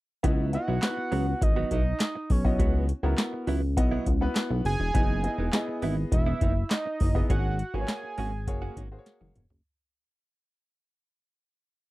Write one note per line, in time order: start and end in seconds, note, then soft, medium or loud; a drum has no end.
0.23 0.57 C#2 loud
0.23 0.51 F#3 medium
0.23 0.42 B3 medium
0.23 0.51 B3 medium
0.23 0.43 E4 medium
0.23 0.52 E4 medium
0.23 0.43 F#4 medium
0.23 0.43 D#5 medium
0.23 kick loud
0.23 closed hi-hat medium
0.53 0.72 B3 medium
0.53 0.72 E4 medium
0.53 0.72 F#4 medium
0.53 0.73 D#5 medium
0.53 1.44 F#5 loud
0.53 closed hi-hat medium
0.68 0.79 B1 loud
0.68 0.79 F#3 medium
0.68 0.79 B3 medium
0.68 0.79 E4 medium
0.82 1.58 B3 medium
0.82 0.89 D#4 soft
0.82 1.58 F#4 medium
0.82 1.58 B4 medium
0.82 muted clean electric guitar stroke soft
0.82 snare loud
0.82 clap medium
0.82 closed hi-hat medium
0.89 1.61 E4 medium
0.97 muted clean electric guitar stroke soft
1.12 1.34 C#2 medium
1.12 1.26 F#3 medium
1.12 1.26 B3 medium
1.12 1.26 F#4 medium
1.12 open hi-hat medium
1.42 1.64 G#1 loud
1.42 1.72 D#5 loud
1.42 muted clean electric guitar stroke soft
1.42 kick loud
1.42 closed hi-hat medium
1.56 1.70 F#3 medium
1.56 1.70 B3 medium
1.56 1.70 F#4 medium
1.71 1.93 B1 medium
1.71 1.82 F#3 medium
1.71 1.82 B3 medium
1.71 1.83 E4 medium
1.71 2.33 D#5 loud
1.71 kick medium
1.71 closed hi-hat medium
2.00 muted clean electric guitar stroke soft
2.00 snare loud
2.00 clap medium
2.00 closed hi-hat loud
2.15 muted clean electric guitar stroke soft
2.30 2.61 B1 medium
2.30 2.90 C#5 medium
2.30 kick medium
2.30 open hi-hat medium
2.45 2.82 B3 medium
2.45 2.83 E4 medium
2.45 2.83 F#4 medium
2.45 2.83 D#5 loud
2.45 muted clean electric guitar stroke soft
2.45 kick medium
2.59 2.92 C#2 loud
2.59 2.86 F#3 medium
2.59 2.87 B3 medium
2.59 2.87 F#4 medium
2.59 kick loud
2.59 closed hi-hat medium
2.89 muted clean electric guitar stroke soft
2.89 closed hi-hat medium
3.03 3.14 C#2 medium
3.03 3.15 F#3 medium
3.03 3.50 B3 medium
3.03 3.15 B3 medium
3.03 3.14 E4 medium
3.03 3.51 E4 medium
3.03 3.51 F#4 medium
3.03 3.51 A#4 medium
3.18 snare loud
3.18 clap medium
3.18 closed hi-hat medium
3.33 muted clean electric guitar stroke soft
3.47 3.78 C#2 medium
3.47 3.61 F#3 medium
3.47 3.62 B3 medium
3.47 3.61 E4 medium
3.47 open hi-hat medium
3.62 muted clean electric guitar stroke soft
3.77 3.99 B1 loud
3.77 4.05 B3 medium
3.77 4.05 E4 medium
3.77 4.06 F#4 medium
3.77 4.06 D#5 loud
3.77 muted clean electric guitar stroke soft
3.77 kick loud
3.77 closed hi-hat loud
3.91 4.05 F#3 medium
3.91 4.06 B3 medium
3.91 4.05 E4 medium
4.06 4.29 C#2 medium
4.06 kick medium
4.06 closed hi-hat medium
4.21 4.68 B3 medium
4.21 4.68 E4 medium
4.21 4.69 F#4 medium
4.21 4.69 B4 loud
4.21 muted clean electric guitar stroke soft
4.36 muted clean electric guitar stroke soft
4.36 snare loud
4.36 clap medium
4.36 closed hi-hat medium
4.50 4.62 B1 medium
4.50 muted clean electric guitar stroke medium
4.65 4.76 F#1 medium
4.65 5.79 G#5 loud
4.65 open hi-hat medium
4.80 4.91 E1 loud
4.80 muted clean electric guitar stroke medium
4.94 5.28 F#1 loud
4.94 5.22 E3 medium
4.94 5.13 B3 medium
4.94 5.22 B3 medium
4.94 5.22 D#4 medium
4.94 5.14 E4 medium
4.94 5.14 G#4 medium
4.94 5.14 D#5 medium
4.94 kick loud
4.94 closed hi-hat medium
5.24 5.43 B3 medium
5.24 5.43 E4 medium
5.24 5.43 G#4 medium
5.24 5.43 D#5 medium
5.24 closed hi-hat medium
5.38 5.50 E1 medium
5.38 5.50 E3 medium
5.38 5.50 B3 medium
5.38 5.49 D#4 medium
5.53 6.29 B3 medium
5.53 6.29 E4 medium
5.53 6.29 G#4 medium
5.53 6.29 D#5 loud
5.53 snare loud
5.53 clap medium
5.53 closed hi-hat medium
5.68 muted clean electric guitar stroke soft
5.82 6.05 G#1 medium
5.82 5.96 E3 medium
5.82 5.97 B3 medium
5.82 5.97 E4 loud
5.82 open hi-hat medium
5.97 muted clean electric guitar stroke soft
6.12 6.34 E1 loud
6.12 6.67 E5 medium
6.12 muted clean electric guitar stroke soft
6.12 kick loud
6.12 closed hi-hat medium
6.26 6.40 E3 medium
6.26 6.41 B3 medium
6.26 6.40 E4 medium
6.41 6.64 F#1 loud
6.41 6.52 E3 medium
6.41 6.53 B3 medium
6.41 6.53 D#4 medium
6.41 kick medium
6.41 closed hi-hat medium
6.56 muted clean electric guitar stroke soft
6.71 7.26 D#5 medium
6.71 muted clean electric guitar stroke soft
6.71 snare loud
6.71 clap medium
6.71 closed hi-hat medium
6.86 muted clean electric guitar stroke soft
7.00 7.23 F#1 loud
7.00 kick medium
7.00 open hi-hat medium
7.15 7.30 B3 medium
7.15 7.30 E4 medium
7.15 7.30 G#4 medium
7.15 7.30 D#5 loud
7.15 muted clean electric guitar stroke medium
7.15 kick medium
7.30 7.63 G#1 loud
7.30 7.57 A#3 medium
7.30 7.57 C#4 medium
7.30 7.58 G#4 medium
7.30 7.76 F#5 loud
7.30 kick loud
7.30 closed hi-hat medium
7.59 closed hi-hat medium
7.74 7.85 G#1 medium
7.74 8.21 A#3 medium
7.74 7.85 A#3 soft
7.74 7.85 C#4 medium
7.74 7.85 F#4 medium
7.74 8.21 F#4 medium
7.74 8.21 G#4 medium
7.74 7.81 B4 medium
7.74 8.92 G#5 loud
7.81 8.25 C#5 medium
7.88 muted clean electric guitar stroke soft
7.88 snare loud
7.88 clap medium
7.88 closed hi-hat medium
8.03 muted clean electric guitar stroke soft
8.18 8.49 G#1 medium
8.18 8.32 A#3 medium
8.18 8.32 C#4 medium
8.18 8.31 F#4 medium
8.18 open hi-hat medium
8.47 8.70 F#1 loud
8.47 8.76 A#3 medium
8.47 8.76 F#4 medium
8.47 8.76 G#4 medium
8.47 8.76 C#5 loud
8.47 muted clean electric guitar stroke soft
8.47 kick loud
8.47 closed hi-hat medium
8.62 8.76 A#3 medium
8.62 8.76 C#4 medium
8.62 8.76 F#4 medium
8.77 8.99 G#1 medium
8.77 8.88 A#3 medium
8.77 8.88 C#4 medium
8.77 8.88 F#4 medium
8.77 kick medium
8.77 closed hi-hat medium
8.91 9.39 A#3 medium
8.91 9.39 F#4 medium
8.91 9.39 G#4 medium
8.91 8.99 C5 medium
8.99 9.42 C#5 medium
9.06 muted clean electric guitar stroke soft
9.06 snare medium
9.06 closed hi-hat medium
9.21 9.32 F#1 medium
9.21 muted clean electric guitar stroke soft
9.21 high tom medium
9.36 9.47 E1 loud
9.36 closed hi-hat medium
9.36 mid tom medium
9.50 9.61 F#1 medium
9.50 muted clean electric guitar stroke medium
9.50 floor tom medium